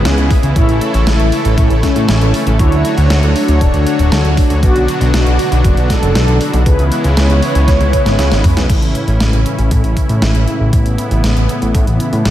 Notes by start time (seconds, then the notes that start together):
Already playing: C#3 E3 G#3 B3 C#4 E4 G#4 B4
0.05 C#2, snare, closed hi-hat
0.18 C#2, closed hi-hat
0.31 kick, open hi-hat
0.43 C#2, closed hi-hat
0.56 A1 A3 C#4 E4 A4 C#5, kick, closed hi-hat
0.69 A1, closed hi-hat
0.81 closed hi-hat
0.94 A1, closed hi-hat
1.07 A1 E4, snare, closed hi-hat
1.20 A1, closed hi-hat
1.32 C#4 E4 A4 C#5, open hi-hat
1.45 A1, closed hi-hat
1.58 A2, kick, closed hi-hat
1.70 A1, closed hi-hat
1.83 C#4, kick, snare, closed hi-hat
1.96 A2, closed hi-hat
2.09 A1, snare, closed hi-hat
2.21 A1, closed hi-hat
2.34 open hi-hat
2.47 A1, closed hi-hat
2.59 D2 D3 F#3 D4 E4 F#4 A4 C#5, kick, closed hi-hat
2.72 D2, closed hi-hat
2.85 closed hi-hat
2.98 D2, closed hi-hat
3.10 D2 D4, snare, closed hi-hat
3.23 D2, closed hi-hat
3.36 D4 F#4 A4 C#5, open hi-hat
3.48 D2, closed hi-hat
3.61 D1, kick, closed hi-hat
3.74 D2, closed hi-hat
3.87 closed hi-hat
3.99 D1, closed hi-hat
4.12 D2, snare, closed hi-hat
4.25 D2, closed hi-hat
4.37 kick, open hi-hat
4.50 D2, closed hi-hat
4.63 B1 B2 D3 D4 F#4 B4 D5, kick, closed hi-hat
4.76 B1, closed hi-hat
4.88 closed hi-hat
5.01 B1, closed hi-hat
5.14 B1 F#4, snare, closed hi-hat
5.26 B1, closed hi-hat
5.39 D4 F#4 B4 D5, open hi-hat
5.52 B1, closed hi-hat
5.64 F#1, kick, closed hi-hat
5.77 B1, closed hi-hat
5.90 A4, kick, snare, closed hi-hat
6.03 F#1, closed hi-hat
6.15 B1, snare, closed hi-hat
6.28 B1, closed hi-hat
6.41 open hi-hat
6.53 B1, closed hi-hat
6.66 C#2 C#3 E3 G#3 B3 C#4 E4 G#4 B4, kick, closed hi-hat
6.79 C#2, closed hi-hat
6.92 closed hi-hat
7.04 C#2, closed hi-hat
7.17 C#2 C#5, snare, closed hi-hat
7.30 C#2, closed hi-hat
7.42 C#4 E4 G#4 B4, open hi-hat
7.55 C#2, closed hi-hat
7.68 C#2, kick, snare, closed hi-hat
7.81 C#2, closed hi-hat, high tom
7.93 kick, closed hi-hat
8.06 G#1, snare, closed hi-hat
8.19 C#2, snare, closed hi-hat
8.31 G#1, snare, closed hi-hat
8.44 kick, mid tom, open hi-hat
8.57 B1, snare, closed hi-hat
8.69 A1 A2 C#3 E3 C#4 E4, kick, closed hi-hat, crash
8.82 A1, closed hi-hat
8.95 closed hi-hat
9.08 A1, closed hi-hat
9.20 A1, snare, closed hi-hat
9.33 A1, closed hi-hat
9.46 closed hi-hat
9.59 A1, closed hi-hat
9.71 A2, kick, closed hi-hat
9.84 A1, closed hi-hat
9.97 kick, closed hi-hat
10.09 A2, closed hi-hat
10.22 A1, snare, closed hi-hat
10.35 A1, closed hi-hat
10.48 closed hi-hat
10.60 A1
10.73 A1 B3, kick, closed hi-hat
10.86 A1, closed hi-hat
10.98 closed hi-hat
11.11 A1, closed hi-hat
11.24 A1, snare, closed hi-hat
11.36 A1, closed hi-hat
11.49 closed hi-hat
11.62 A1, closed hi-hat
11.75 A2, kick, closed hi-hat
11.87 A1, closed hi-hat
12.00 closed hi-hat
12.13 A2, closed hi-hat
12.25 A1, snare, closed hi-hat